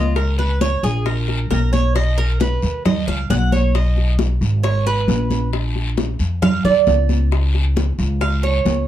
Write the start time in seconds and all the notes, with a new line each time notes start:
Already playing: C#2 F4 D#5
0.16 A#4, high bongo, high conga, long guiro
0.39 B4, high bongo, high conga
0.61 C#5, high bongo, high conga, short guiro
0.83 A#1 G#4, high conga, short guiro
1.06 A#4, high bongo, high conga, long guiro
1.28 high bongo, high conga
1.50 B1 A#4, high bongo, low bongo, high conga, short guiro
1.73 C#5, high bongo, high conga, short guiro
1.95 D#5, high bongo, high conga, long guiro
2.18 A#4, high bongo, high conga
2.40 B4, high bongo, high conga, short guiro
2.62 D#2, high conga, short guiro
2.85 D#5, high bongo, high conga, low conga, long guiro
3.07 C#2 F5, high bongo, high conga
3.30 B1 F#5, high bongo, low bongo, high conga, short guiro
3.52 C#5, high bongo, high conga, short guiro
3.74 D#5, high bongo, high conga, long guiro
3.97 high bongo, high conga
4.19 high bongo, high conga, short guiro
4.41 G#1, high conga, short guiro
4.63 C#5, high bongo, high conga, long guiro
4.86 B4, high bongo, high conga
5.08 A#1, high bongo, low bongo, high conga, short guiro
5.31 high bongo, high conga, short guiro
5.53 high bongo, high conga, long guiro
5.75 high bongo, high conga
5.97 high bongo, high conga, short guiro
6.19 F2, high conga, short guiro
6.42 F5, high bongo, high conga, low conga, long guiro
6.64 D#2 D5, high bongo, high conga, low conga
6.87 C#2, high bongo, low bongo, high conga, short guiro
7.09 high bongo, high conga, short guiro
7.32 high bongo, high conga, long guiro
7.55 high bongo, high conga
7.76 high bongo, high conga, short guiro
7.99 C#2, high conga, short guiro
8.21 F5, high bongo, high conga, long guiro
8.43 C#5, high bongo, high conga
8.65 C#2, high bongo, low bongo, high conga, short guiro